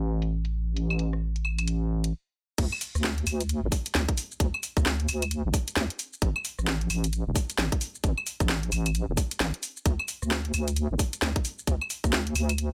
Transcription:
Already playing: wobble bass A1
0.22 closed hi-hat
0.45 closed hi-hat
0.76 closed hi-hat
0.90 claves
0.99 closed hi-hat
1.13 cross-stick
1.36 closed hi-hat
1.45 claves
1.58 closed hi-hat, claves
1.68 closed hi-hat
2.04 closed hi-hat
2.58 wobble bass D2, kick, closed hi-hat, crash, shaker
2.72 claves
2.81 open hi-hat, shaker
2.95 wobble bass D2, cross-stick, shaker
3.04 snare, shaker
3.18 closed hi-hat
3.27 wobble bass D2, open hi-hat, claves, shaker
3.41 closed hi-hat, shaker
3.49 closed hi-hat, shaker
3.63 wobble bass A1
3.72 kick, open hi-hat, shaker
3.86 closed hi-hat, shaker
3.95 wobble bass D2, snare, shaker
4.09 kick, closed hi-hat
4.17 open hi-hat, shaker
4.32 shaker
4.40 wobble bass D2, kick, closed hi-hat, shaker
4.54 claves
4.63 open hi-hat, shaker
4.77 wobble bass D2, kick, cross-stick, shaker
4.86 snare, shaker
5.00 closed hi-hat
5.08 wobble bass D2, open hi-hat, claves, shaker
5.22 closed hi-hat, claves, shaker
5.31 closed hi-hat, shaker
5.45 wobble bass A1
5.54 kick, open hi-hat, shaker
5.68 closed hi-hat, shaker
5.76 wobble bass D2, snare, shaker
5.90 closed hi-hat
5.99 open hi-hat, shaker
6.13 shaker
6.22 wobble bass A1, kick, closed hi-hat, shaker
6.36 claves
6.45 open hi-hat, shaker
6.59 wobble bass A1, cross-stick, shaker
6.67 snare, shaker
6.81 closed hi-hat
6.90 wobble bass A1, open hi-hat, claves, shaker
7.04 closed hi-hat, shaker
7.13 closed hi-hat, shaker
7.27 wobble bass E1
7.36 kick, open hi-hat, shaker
7.50 closed hi-hat, shaker
7.58 wobble bass A1, snare, shaker
7.72 kick, closed hi-hat
7.81 open hi-hat, shaker
7.95 shaker
8.04 wobble bass A1, kick, closed hi-hat, shaker
8.18 claves
8.27 open hi-hat, shaker
8.40 wobble bass A1, kick, cross-stick, shaker
8.49 snare, shaker
8.63 closed hi-hat
8.72 wobble bass A1, open hi-hat, claves, shaker
8.86 closed hi-hat, claves, shaker
8.95 closed hi-hat, shaker
9.08 wobble bass E1
9.17 kick, open hi-hat, shaker
9.31 closed hi-hat, shaker
9.40 wobble bass A1, snare, shaker
9.54 closed hi-hat
9.63 open hi-hat, shaker
9.77 shaker
9.86 wobble bass D2, kick, closed hi-hat, shaker
9.99 claves
10.08 open hi-hat, shaker
10.22 wobble bass D2, cross-stick, shaker
10.31 snare, shaker
10.45 closed hi-hat
10.54 wobble bass D2, open hi-hat, claves, shaker
10.68 closed hi-hat, shaker
10.76 closed hi-hat, shaker
10.90 wobble bass A1
10.99 kick, open hi-hat, shaker
11.13 closed hi-hat, shaker
11.22 wobble bass D2, snare, shaker
11.36 kick, closed hi-hat
11.45 open hi-hat, shaker
11.59 shaker
11.67 wobble bass D2, kick, closed hi-hat, shaker
11.81 claves
11.90 open hi-hat, shaker
12.04 wobble bass D2, kick, cross-stick, shaker
12.13 snare, shaker
12.27 closed hi-hat
12.35 wobble bass D2, open hi-hat, claves, shaker
12.49 closed hi-hat, claves, shaker
12.58 closed hi-hat, shaker

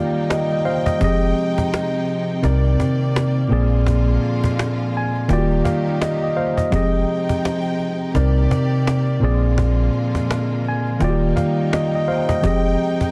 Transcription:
Already playing: tine electric piano D#3 A#3 F4 G4 D5 F5 G5, string section D#3 G3 A#3 D#4 G5
0.16 cajon slap
0.30 tine electric piano D#5, cajon slap
0.50 tine electric piano D#5, cajon slap
0.65 tine electric piano C5 F5, cajon slap
0.67 cajon slap
0.86 tine electric piano D#5, cajon bass
0.99 sub bass F1, string section C3 F3 G#3 D#4, tine electric piano F3 C4 G4 G#4, cajon bass
1.04 tine electric piano D#5
1.22 cajon slap
1.36 cajon slap
1.58 cajon bass
1.72 cajon slap
1.74 cajon slap
1.94 cajon slap
2.08 cajon slap
2.29 cajon slap
2.42 sub bass C2, tine electric piano C3 C4 D#4 A#4 D5, string section D#3 A#3 D5, cajon bass, cajon slap
2.65 cajon slap
2.80 cajon bass
3.01 cajon slap
3.16 cajon slap
3.35 cajon slap
3.48 sub bass A#1, tine electric piano A#2 A#3 C4 G#4, string section D3 F3 G#3 F4, cajon slap
3.53 tine electric piano D5
3.71 cajon slap
3.87 cajon bass
4.07 cajon slap
4.22 cajon slap
4.44 cajon bass
4.58 cajon slap
4.60 cajon slap
4.79 cajon slap
4.93 tine electric piano G#5, cajon slap
5.15 cajon slap
5.28 sub bass D#1, tine electric piano D#3 A#3 F4 F#4 G5, string section D#3 G3 A#3 D#4 G4, cajon bass, cajon slap
5.33 tine electric piano D5
5.38 tine electric piano G4
5.50 cajon slap
5.65 tine electric piano F5, cajon bass
5.87 cajon slap
6.01 tine electric piano D#5, cajon slap
6.21 tine electric piano D#5, cajon slap
6.36 tine electric piano C5 F5, cajon slap
6.38 cajon slap
6.57 tine electric piano D#5, cajon bass
6.71 sub bass F1, string section C3 F3 G#3 D#4 G5, tine electric piano F3 C4 G4 G#4, cajon bass
6.76 tine electric piano D#5
6.93 cajon slap
7.08 cajon slap
7.29 cajon bass
7.44 cajon slap
7.46 cajon slap
7.65 cajon slap
7.79 cajon slap
8.01 cajon slap
8.14 sub bass C2, tine electric piano C3 C4 D#4 A#4 D5, string section C3 D#3 A#3 G4 D5, cajon bass, cajon slap
8.36 cajon slap
8.51 cajon bass
8.72 cajon slap
8.87 cajon slap
9.06 cajon slap
9.20 sub bass A#1, tine electric piano A#2 A#3 C4 G#4, string section D3 F3 G#3 F4, cajon slap
9.24 tine electric piano D5
9.42 cajon slap
9.58 cajon bass
9.78 cajon slap
9.93 cajon slap
10.15 cajon bass
10.29 cajon slap
10.31 cajon slap
10.50 cajon slap
10.64 cajon slap
10.68 tine electric piano G#5
10.86 cajon slap
10.99 sub bass D#1, tine electric piano D#3 A#3 F4 F#4 G5, string section D#3 G3 D#4 G5, cajon bass, cajon slap
11.04 tine electric piano D5
11.09 tine electric piano G4
11.22 cajon slap
11.36 tine electric piano F5, cajon bass
11.58 cajon slap
11.73 tine electric piano D#5, cajon slap
11.92 tine electric piano D#5, cajon slap
12.08 tine electric piano C5 F5, cajon slap
12.09 cajon slap
12.29 tine electric piano D#5, cajon bass
12.42 sub bass F1, string section C3 F3 G#3 D#4, tine electric piano F3 C4 G4 G#4, cajon bass
12.47 tine electric piano D#5
12.64 cajon slap
12.79 cajon slap
13.01 cajon bass

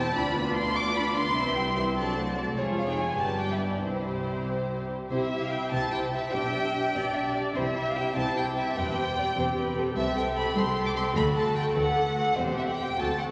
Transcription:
Already playing: viola section C4 E4, violin section G4 C5 A5
0.14 cello section D2, double bass section D2, violin section D4 D5 B5, viola section D4 F4
0.34 viola section B3 D4, violin section F4 B4
0.55 violin section D4 D5 C6, viola section D4 F4
0.74 viola section B3 D4, violin section F4 B4 D6
0.95 violin section D4 D5 B5, viola section D4 F4
1.15 viola section B3 D4, violin section F4 B4 C6
1.36 cello section C2, double bass section C2, viola section E3 C4, violin section E4 E5
1.55 viola section G3 E4, violin section G4 G5
1.76 viola section E3 C4, violin section E4 E5 C6
1.95 viola section F#3 D4, violin section A4 D5 A5
2.16 viola section A3 C4, violin section F#4 C5
2.34 viola section F#3 D4, violin section A4 D5
2.55 double bass section F1, cello section F2, viola section G#3 F4, violin section G#4 C#5
2.79 violin section F5
2.87 viola section D#4, violin section G5
2.97 violin section G#5
3.18 double bass section G1, cello section G2, viola section G3 D4, violin section G4 B4 A5
3.40 violin section G5
3.52 violin section E5
3.62 violin section D5
3.81 double bass section C2, cello section C3, viola section G3 E4, violin section G4 C5
5.10 double bass section C2, cello section C3, viola section E4 G4, violin section C5 E5
5.31 viola section E4 G4, violin section E5
5.41 violin section F5
5.51 viola section E4 G4, violin section G5
5.71 double bass section C2, cello section C3, viola section E4 G4, violin section C5 A5
5.92 viola section E4 G4, violin section G5
6.12 viola section E4 G4, violin section E5
6.32 double bass section B1, cello section B2, viola section D4 G4, violin section E5 G5
6.53 viola section D4 G4
6.74 viola section D4 G4
6.95 double bass section B1, cello section B2, viola section D4 G4, violin section D5
7.14 viola section D4 G4, violin section E5
7.34 viola section D4 G4, violin section D5
7.55 double bass section C2, cello section C3, viola section E4 G4, violin section C5 E5
7.77 viola section E4 G4, violin section E5
7.89 violin section F5
7.96 viola section E4 G4, violin section G5
8.15 double bass section C2, cello section C3, viola section E4 G4, violin section C5 A5
8.36 viola section E4 G4, violin section G5
8.55 viola section E4 G4, violin section E5
8.75 double bass section E1, cello section E2, viola section C4 G4, violin section B4 G5
8.96 viola section C4 G4, violin section C5
9.16 viola section C4 G4, violin section D5
9.36 double bass section E1, cello section E2, viola section C4 G4, violin section C5
9.57 viola section C4 G4, violin section B4
9.76 viola section C4 G4, violin section A4
9.95 double bass section C2, cello section C2, viola section C4 A4, violin section G4 E5
10.16 viola section C4 A4, violin section G5
10.35 viola section C4 A4, violin section B5
10.55 double bass section C2, cello section C2, viola section C4 A4, violin section C6
10.75 viola section C4 A4
10.86 violin section D6
10.95 viola section C4 A4, violin section C6
11.15 double bass section D2, cello section D2, viola section A3 A4, violin section F#4 B5
11.35 viola section A3 A4, violin section A5
11.56 viola section A3 A4, violin section G5
11.75 double bass section D2, cello section D2, viola section A3 A4, violin section B4 F#5
11.95 viola section A3 A4, violin section A4
12.15 viola section A3 A4, violin section F#4
12.36 double bass section E1, cello section E2, viola section C4 G4, violin section G4 C5
12.57 viola section C4 G4, violin section E5
12.67 violin section F#5
12.77 viola section C4 G4, violin section G5
12.99 cello section D2, double bass section D2, viola section C4 F#4, violin section A4 A5
13.19 viola section C4 F#4, violin section F#5

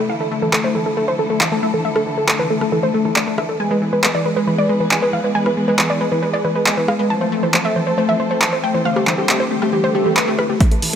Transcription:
Already playing: string section A3 E4
0.09 string section D3 F3 A4, synth pluck E3 F5
0.20 synth pluck A3 A4
0.31 synth pluck A3
0.42 synth pluck E3 A4
0.53 synth pluck A3 A4, clap
0.64 synth pluck A3 C5
0.75 synth pluck E3 A4
0.86 synth pluck A3 A4
0.97 synth pluck A3 A4
1.08 synth pluck E3 C5
1.19 synth pluck A3 A4
1.30 synth pluck A3 A4
1.41 synth pluck E3 F5, clap
1.52 synth pluck A3 A4
1.63 synth pluck A3 E5
1.74 synth pluck E3 A4
1.85 synth pluck A3 E5
1.96 synth pluck A3 A4, cross-stick
2.07 synth pluck E3
2.18 synth pluck A3 A4
2.28 synth pluck A3 A4, clap
2.39 synth pluck E3 B4
2.50 synth pluck A3 A4
2.61 synth pluck A3 A4, cross-stick
2.72 synth pluck E3 A4
2.83 synth pluck A3 C5
2.94 synth pluck A3 A4
3.05 synth pluck E3 A4
3.16 synth pluck A3 D5, clap
3.27 synth pluck A3 A4
3.38 synth pluck E3 E5, cross-stick
3.49 synth pluck A3 A4
3.60 string section E3 G#3 B3 G#4 B4, synth pluck G#3 G#5
3.71 synth pluck G#3 B4
3.82 synth pluck E3
3.93 synth pluck G#3 B4
4.04 synth pluck G#3 B4, clap
4.15 synth pluck E3 D5
4.26 synth pluck G#3 B4
4.37 synth pluck G#3 B4
4.48 synth pluck E3 B4
4.58 synth pluck G#3 D5
4.69 synth pluck G#3 B4
4.80 synth pluck E3 B4
4.91 synth pluck G#3 G#5, clap
5.02 synth pluck G#3 B4
5.13 synth pluck E3 F5
5.24 synth pluck G#3 B4
5.35 synth pluck G#3 G#5
5.46 synth pluck E3 B4, cross-stick
5.57 synth pluck G#3
5.68 synth pluck G#3 B4
5.79 synth pluck E3 B4, clap
5.90 synth pluck G#3 D5
6.01 synth pluck G#3 B4
6.12 synth pluck E3 B4
6.23 synth pluck G#3 B4
6.33 synth pluck G#3 D5
6.45 synth pluck E3 B4
6.56 synth pluck G#3 B4
6.66 synth pluck G#3 G#5, clap
6.77 synth pluck E3 B4
6.88 synth pluck G#3 F5, cross-stick
6.99 synth pluck G#3 B4
7.10 synth pluck E3 A5, string section F3 A3 C4 A4 C5
7.21 synth pluck A3 C5
7.32 synth pluck A3
7.43 synth pluck E3 C5
7.54 synth pluck A3 C5, clap
7.65 synth pluck A3 E5
7.76 synth pluck E3 C5
7.87 synth pluck A3 C5
7.98 synth pluck A3 C5
8.09 synth pluck E3 E5
8.20 synth pluck A3 C5
8.31 synth pluck A3 C5
8.42 synth pluck E3 A5, clap
8.53 synth pluck A3 C5
8.64 synth pluck A3 G5
8.74 synth pluck E3 C5
8.85 string section D3 G3 G4, synth pluck A3 F5
8.96 synth pluck A3 G4, cross-stick
9.07 synth pluck E3, clap
9.18 synth pluck A3 G4
9.29 synth pluck A3 G4, clap
9.40 synth pluck E3 C5
9.51 synth pluck A3 G4
9.62 synth pluck A3 G4, cross-stick
9.73 synth pluck E3 G4, swell
9.84 synth pluck A3 C5
9.95 synth pluck A3 G4
10.06 synth pluck E3 G4
10.17 synth pluck A3 B4, clap
10.28 synth pluck A3 G4
10.39 synth pluck E3 B4, cross-stick
10.49 synth pluck A3 G4
10.60 string section C3 E3 A3 E4 A4, synth pluck E5, kick, snare, closed hi-hat, riser
10.71 synth pluck A3 A4, closed hi-hat
10.82 synth pluck E3, open hi-hat

